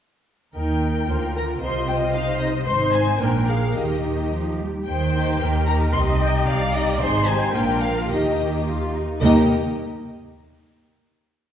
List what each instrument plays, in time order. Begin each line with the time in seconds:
0.54 double bass section D#2, cello section D#3, viola section D#4 A#4, violin section G5
1.08 double bass section D2, cello section D3, viola section F4 A#4, violin section C5
1.35 viola section F4, violin section A#4 A#5
1.62 double bass section C2, cello section C3, viola section C5, violin section D#5 C6
1.88 violin section G5
2.14 viola section D#4 C5, violin section F5
2.39 violin section D#5
2.66 double bass section G#1, cello section G#2, viola section D#4 C5, violin section C5 C6
2.93 violin section G#5
3.21 double bass section A#1, cello section A#2, viola section D4 A#4, violin section A#4 G5
3.49 viola section G#4, violin section F5
3.74 double bass section D#2, cello section D#3, viola section D#4 G4, violin section G4 D#5
4.32 cello section F3
4.60 cello section G3
4.85 double bass section D#2, cello section D#3, viola section C5, violin section G5
5.15 violin section D#4 G4
5.41 double bass section D#2, cello section D#3, viola section A#4
5.66 violin section D#4 G4 A#5
5.93 double bass section C2, cello section C3, violin section D#4 G4 C6, viola section D#5
6.20 violin section D#4 G4 G5
6.47 double bass section C2, cello section C3, viola section D5, violin section F5
6.73 violin section D#4 G4 D#5
7.00 double bass section G#1, cello section G#2, violin section D#4 G#4 C6, viola section C5
7.26 violin section G4 G#5
7.53 double bass section A#1, cello section A#2, violin section D4 F4 G5, viola section A#4
7.81 violin section F5
8.09 double bass section D#2, cello section D#3, violin section D#4 G4 D#5, viola section G4
8.66 violin section F4
8.94 violin section D#4
9.21 double bass section D#2, cello section D#2, viola section A#3 D#4, violin section G4 A#4 D#5